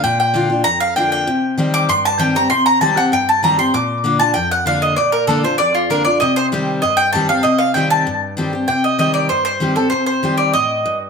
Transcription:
<<
  \new Staff \with { instrumentName = "Mandolin" } { \time 4/4 \key c \dorian \tempo 4 = 194 g''8 g''4. bes''8 f''8 g''8 g''8~ | g''4 r8 d'''8 c'''8 a''8 g''8 bes''8 | c'''8 bes''8 a''8 fis''8 g''8 a''8 bes''8 c'''8 | d'''4. a''8 g''8 fis''8 f''8 ees''8 |
d''8 bes'8 a'8 c''8 d''8 f'8 bes'8 d''8 | ees''8 c''8 r4 ees''8 g''8 a''8 f''8 | ees''8 f''8 g''8 a''4 r4. | g''8 ees''8 ees''8 d''8 c''8 c''4 a'8 |
c''8 c''4 d''8 ees''4. r8 | }
  \new Staff \with { instrumentName = "Steel-string acoustic guitar" } { \time 4/4 \key c \dorian << { r4 <d bes d' f'>8 <d' f'>8 r4 <d bes d' f'>4 | r4 <ees g c' g'>4 r4 <ees g c' g'>8 <c' g'>8 | r4 <ees g c' g'>8 <c' g'>8 r4 <ees g c' g'>8 <c' g'>8 | r4 <d bes d' f'>8 <d' f'>8 r4 <d bes d' f'>4 |
r4 <d bes d' f'>8 <d' f'>8 r4 <d bes d' f'>8 <d' f'>8 | r4 <ees g c' g'>4 r4 <ees g c' g'>8 <c' g'>8 | r4 <ees g c' g'>4 r4 <ees g c' g'>8 <c' g'>8 | r4 <ees g c' g'>4 r4 <ees g c' g'>8 <c' g'>8 |
r4 <ees g c' g'>4 r2 | } \\ { bes,2 f,2 | c2 g,2 | c2 g,2 | bes,2 f,2 |
bes,2 f,2 | c2 g,2 | c2 g,2 | c2 g,2 |
c2 a,4 g,4 | } >> }
>>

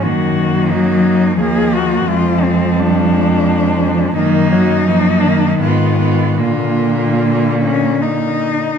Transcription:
<<
  \new Staff \with { instrumentName = "Cello" } { \time 3/4 \key ees \minor \tempo 4 = 85 ges'4 ees'4 aes'8 ges'8 | f'8 c'8 d'2 | ees'2 f'4 | f'4. des'8 ees'4 | }
  \new Staff \with { instrumentName = "Cello" } { \time 3/4 \key ees \minor bes2 bes4 | aes4 g8 aes4. | bes4 bes4 ces'8 ces'8 | bes2~ bes8 r8 | }
  \new Staff \with { instrumentName = "Cello" } { \clef bass \time 3/4 \key ees \minor ees4 ges4 f4~ | f2. | ees8 ges8 f8 ees4. | d2~ d8 r8 | }
  \new Staff \with { instrumentName = "Cello" } { \clef bass \time 3/4 \key ees \minor ges,2 ees,4 | f,2. | ges,2 aes,4 | bes,2~ bes,8 r8 | }
>>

